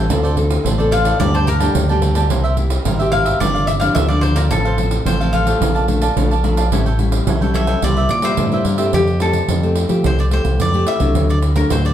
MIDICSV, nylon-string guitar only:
0, 0, Header, 1, 2, 480
1, 0, Start_track
1, 0, Tempo, 552486
1, 89, Time_signature, 4, 2, 24, 8
1, 10370, End_track
2, 0, Start_track
2, 0, Title_t, "Nylon-string guitar"
2, 0, Program_c, 0, 24
2, 81, Note_on_c, 0, 50, 59
2, 85, Note_on_c, 0, 60, 52
2, 90, Note_on_c, 0, 65, 60
2, 91, Note_on_c, 0, 69, 59
2, 227, Note_off_c, 0, 60, 0
2, 227, Note_off_c, 0, 65, 0
2, 230, Note_off_c, 0, 69, 0
2, 321, Note_on_c, 0, 60, 57
2, 325, Note_on_c, 0, 65, 57
2, 329, Note_on_c, 0, 69, 58
2, 540, Note_off_c, 0, 50, 0
2, 548, Note_off_c, 0, 60, 0
2, 551, Note_off_c, 0, 65, 0
2, 552, Note_off_c, 0, 69, 0
2, 564, Note_on_c, 0, 45, 57
2, 690, Note_on_c, 0, 60, 64
2, 692, Note_on_c, 0, 65, 68
2, 697, Note_on_c, 0, 69, 70
2, 1008, Note_off_c, 0, 60, 0
2, 1010, Note_off_c, 0, 65, 0
2, 1011, Note_off_c, 0, 69, 0
2, 1020, Note_off_c, 0, 45, 0
2, 1043, Note_on_c, 0, 43, 59
2, 1046, Note_on_c, 0, 50, 54
2, 1048, Note_on_c, 0, 55, 61
2, 1050, Note_on_c, 0, 58, 55
2, 1054, Note_on_c, 0, 62, 55
2, 1060, Note_on_c, 0, 67, 61
2, 1269, Note_off_c, 0, 50, 0
2, 1271, Note_off_c, 0, 55, 0
2, 1271, Note_off_c, 0, 58, 0
2, 1274, Note_off_c, 0, 62, 0
2, 1275, Note_off_c, 0, 67, 0
2, 1393, Note_on_c, 0, 50, 69
2, 1400, Note_on_c, 0, 55, 76
2, 1401, Note_on_c, 0, 58, 67
2, 1405, Note_on_c, 0, 62, 69
2, 1408, Note_on_c, 0, 67, 76
2, 1499, Note_off_c, 0, 43, 0
2, 1524, Note_on_c, 0, 43, 55
2, 1600, Note_off_c, 0, 50, 0
2, 1602, Note_off_c, 0, 55, 0
2, 1603, Note_off_c, 0, 58, 0
2, 1605, Note_off_c, 0, 62, 0
2, 1607, Note_off_c, 0, 67, 0
2, 1652, Note_on_c, 0, 50, 60
2, 1656, Note_on_c, 0, 55, 64
2, 1656, Note_on_c, 0, 58, 61
2, 1660, Note_on_c, 0, 62, 59
2, 1664, Note_on_c, 0, 67, 74
2, 1848, Note_off_c, 0, 50, 0
2, 1849, Note_off_c, 0, 55, 0
2, 1850, Note_off_c, 0, 58, 0
2, 1853, Note_off_c, 0, 62, 0
2, 1854, Note_off_c, 0, 67, 0
2, 1873, Note_on_c, 0, 58, 69
2, 1879, Note_on_c, 0, 64, 62
2, 1880, Note_on_c, 0, 67, 71
2, 1978, Note_off_c, 0, 43, 0
2, 2007, Note_on_c, 0, 48, 54
2, 2199, Note_off_c, 0, 58, 0
2, 2200, Note_off_c, 0, 64, 0
2, 2202, Note_off_c, 0, 67, 0
2, 2240, Note_on_c, 0, 58, 56
2, 2243, Note_on_c, 0, 64, 57
2, 2248, Note_on_c, 0, 67, 63
2, 2459, Note_off_c, 0, 48, 0
2, 2484, Note_on_c, 0, 43, 60
2, 2561, Note_off_c, 0, 58, 0
2, 2563, Note_off_c, 0, 64, 0
2, 2564, Note_off_c, 0, 67, 0
2, 2605, Note_on_c, 0, 58, 65
2, 2610, Note_on_c, 0, 64, 64
2, 2615, Note_on_c, 0, 67, 75
2, 2923, Note_off_c, 0, 58, 0
2, 2926, Note_off_c, 0, 64, 0
2, 2927, Note_off_c, 0, 67, 0
2, 2937, Note_off_c, 0, 43, 0
2, 2960, Note_on_c, 0, 43, 58
2, 2961, Note_on_c, 0, 53, 60
2, 2962, Note_on_c, 0, 58, 58
2, 2967, Note_on_c, 0, 62, 61
2, 3184, Note_off_c, 0, 53, 0
2, 3186, Note_off_c, 0, 58, 0
2, 3187, Note_off_c, 0, 62, 0
2, 3309, Note_on_c, 0, 53, 66
2, 3317, Note_on_c, 0, 58, 69
2, 3317, Note_on_c, 0, 62, 85
2, 3415, Note_off_c, 0, 43, 0
2, 3441, Note_on_c, 0, 50, 63
2, 3516, Note_off_c, 0, 53, 0
2, 3517, Note_off_c, 0, 58, 0
2, 3519, Note_off_c, 0, 62, 0
2, 3562, Note_on_c, 0, 53, 69
2, 3568, Note_on_c, 0, 58, 67
2, 3574, Note_on_c, 0, 62, 76
2, 3761, Note_off_c, 0, 53, 0
2, 3765, Note_off_c, 0, 58, 0
2, 3766, Note_off_c, 0, 62, 0
2, 3786, Note_on_c, 0, 53, 68
2, 3792, Note_on_c, 0, 60, 65
2, 3793, Note_on_c, 0, 65, 75
2, 3895, Note_off_c, 0, 50, 0
2, 3917, Note_on_c, 0, 45, 55
2, 4113, Note_off_c, 0, 53, 0
2, 4115, Note_off_c, 0, 60, 0
2, 4116, Note_off_c, 0, 65, 0
2, 4152, Note_on_c, 0, 53, 57
2, 4160, Note_on_c, 0, 60, 53
2, 4160, Note_on_c, 0, 65, 64
2, 4296, Note_off_c, 0, 53, 0
2, 4298, Note_off_c, 0, 60, 0
2, 4299, Note_off_c, 0, 65, 0
2, 4373, Note_off_c, 0, 45, 0
2, 4398, Note_on_c, 0, 45, 58
2, 4401, Note_on_c, 0, 53, 61
2, 4402, Note_on_c, 0, 60, 63
2, 4406, Note_on_c, 0, 65, 66
2, 4479, Note_off_c, 0, 53, 0
2, 4481, Note_off_c, 0, 60, 0
2, 4483, Note_off_c, 0, 65, 0
2, 4526, Note_on_c, 0, 53, 67
2, 4531, Note_on_c, 0, 60, 67
2, 4532, Note_on_c, 0, 65, 70
2, 4723, Note_off_c, 0, 53, 0
2, 4724, Note_off_c, 0, 60, 0
2, 4726, Note_off_c, 0, 65, 0
2, 4750, Note_on_c, 0, 57, 67
2, 4756, Note_on_c, 0, 62, 59
2, 4757, Note_on_c, 0, 65, 70
2, 4853, Note_off_c, 0, 45, 0
2, 4880, Note_on_c, 0, 46, 61
2, 5075, Note_off_c, 0, 57, 0
2, 5076, Note_off_c, 0, 62, 0
2, 5078, Note_off_c, 0, 65, 0
2, 5113, Note_on_c, 0, 57, 63
2, 5119, Note_on_c, 0, 62, 53
2, 5119, Note_on_c, 0, 65, 66
2, 5256, Note_off_c, 0, 57, 0
2, 5258, Note_off_c, 0, 62, 0
2, 5259, Note_off_c, 0, 65, 0
2, 5334, Note_off_c, 0, 46, 0
2, 5357, Note_on_c, 0, 53, 63
2, 5358, Note_on_c, 0, 57, 55
2, 5360, Note_on_c, 0, 62, 61
2, 5364, Note_on_c, 0, 65, 64
2, 5497, Note_off_c, 0, 57, 0
2, 5500, Note_off_c, 0, 62, 0
2, 5500, Note_off_c, 0, 65, 0
2, 5591, Note_on_c, 0, 57, 53
2, 5595, Note_on_c, 0, 62, 61
2, 5600, Note_on_c, 0, 65, 69
2, 5748, Note_off_c, 0, 57, 0
2, 5750, Note_off_c, 0, 62, 0
2, 5753, Note_off_c, 0, 65, 0
2, 5813, Note_off_c, 0, 53, 0
2, 5839, Note_on_c, 0, 45, 58
2, 5842, Note_on_c, 0, 55, 58
2, 5845, Note_on_c, 0, 61, 54
2, 5847, Note_on_c, 0, 64, 66
2, 5980, Note_off_c, 0, 55, 0
2, 5980, Note_off_c, 0, 61, 0
2, 5983, Note_off_c, 0, 64, 0
2, 6073, Note_on_c, 0, 55, 57
2, 6077, Note_on_c, 0, 61, 56
2, 6081, Note_on_c, 0, 64, 61
2, 6295, Note_off_c, 0, 45, 0
2, 6319, Note_on_c, 0, 52, 60
2, 6396, Note_off_c, 0, 55, 0
2, 6399, Note_off_c, 0, 61, 0
2, 6400, Note_off_c, 0, 64, 0
2, 6442, Note_on_c, 0, 55, 66
2, 6448, Note_on_c, 0, 61, 62
2, 6450, Note_on_c, 0, 64, 67
2, 6762, Note_off_c, 0, 55, 0
2, 6763, Note_off_c, 0, 61, 0
2, 6765, Note_off_c, 0, 64, 0
2, 6775, Note_off_c, 0, 52, 0
2, 6796, Note_on_c, 0, 48, 56
2, 6801, Note_on_c, 0, 55, 58
2, 6801, Note_on_c, 0, 58, 58
2, 6806, Note_on_c, 0, 64, 69
2, 7023, Note_off_c, 0, 55, 0
2, 7025, Note_off_c, 0, 58, 0
2, 7027, Note_off_c, 0, 64, 0
2, 7145, Note_on_c, 0, 55, 62
2, 7150, Note_on_c, 0, 58, 73
2, 7153, Note_on_c, 0, 64, 76
2, 7255, Note_off_c, 0, 48, 0
2, 7276, Note_on_c, 0, 43, 58
2, 7354, Note_off_c, 0, 55, 0
2, 7356, Note_off_c, 0, 58, 0
2, 7357, Note_off_c, 0, 64, 0
2, 7400, Note_on_c, 0, 55, 63
2, 7404, Note_on_c, 0, 58, 67
2, 7408, Note_on_c, 0, 64, 74
2, 7601, Note_off_c, 0, 55, 0
2, 7603, Note_off_c, 0, 58, 0
2, 7606, Note_off_c, 0, 64, 0
2, 7625, Note_on_c, 0, 57, 66
2, 7628, Note_on_c, 0, 60, 72
2, 7634, Note_on_c, 0, 67, 68
2, 7734, Note_off_c, 0, 43, 0
2, 7756, Note_on_c, 0, 53, 54
2, 7955, Note_off_c, 0, 57, 0
2, 7956, Note_off_c, 0, 60, 0
2, 7959, Note_off_c, 0, 67, 0
2, 7993, Note_on_c, 0, 57, 54
2, 7997, Note_on_c, 0, 60, 51
2, 8002, Note_on_c, 0, 67, 55
2, 8216, Note_off_c, 0, 53, 0
2, 8242, Note_on_c, 0, 48, 58
2, 8320, Note_off_c, 0, 57, 0
2, 8322, Note_off_c, 0, 60, 0
2, 8323, Note_off_c, 0, 67, 0
2, 8366, Note_on_c, 0, 57, 62
2, 8370, Note_on_c, 0, 60, 60
2, 8372, Note_on_c, 0, 67, 64
2, 8567, Note_off_c, 0, 57, 0
2, 8568, Note_off_c, 0, 60, 0
2, 8570, Note_off_c, 0, 67, 0
2, 8587, Note_on_c, 0, 57, 61
2, 8592, Note_on_c, 0, 60, 61
2, 8597, Note_on_c, 0, 67, 64
2, 8699, Note_off_c, 0, 48, 0
2, 8725, Note_on_c, 0, 53, 57
2, 8918, Note_off_c, 0, 57, 0
2, 8920, Note_off_c, 0, 60, 0
2, 8923, Note_off_c, 0, 67, 0
2, 8960, Note_on_c, 0, 57, 56
2, 8964, Note_on_c, 0, 60, 54
2, 8967, Note_on_c, 0, 67, 61
2, 9182, Note_off_c, 0, 53, 0
2, 9207, Note_on_c, 0, 48, 57
2, 9285, Note_off_c, 0, 57, 0
2, 9287, Note_off_c, 0, 60, 0
2, 9289, Note_off_c, 0, 67, 0
2, 9326, Note_on_c, 0, 57, 61
2, 9328, Note_on_c, 0, 60, 62
2, 9335, Note_on_c, 0, 67, 73
2, 9529, Note_off_c, 0, 57, 0
2, 9530, Note_off_c, 0, 60, 0
2, 9532, Note_off_c, 0, 67, 0
2, 9555, Note_on_c, 0, 54, 67
2, 9559, Note_on_c, 0, 57, 67
2, 9565, Note_on_c, 0, 62, 67
2, 9665, Note_off_c, 0, 48, 0
2, 9690, Note_on_c, 0, 50, 54
2, 9885, Note_off_c, 0, 54, 0
2, 9887, Note_off_c, 0, 57, 0
2, 9889, Note_off_c, 0, 62, 0
2, 10037, Note_on_c, 0, 54, 59
2, 10042, Note_on_c, 0, 57, 62
2, 10047, Note_on_c, 0, 62, 66
2, 10148, Note_off_c, 0, 50, 0
2, 10174, Note_on_c, 0, 45, 57
2, 10367, Note_off_c, 0, 54, 0
2, 10369, Note_off_c, 0, 57, 0
2, 10370, Note_off_c, 0, 45, 0
2, 10370, Note_off_c, 0, 62, 0
2, 10370, End_track
0, 0, End_of_file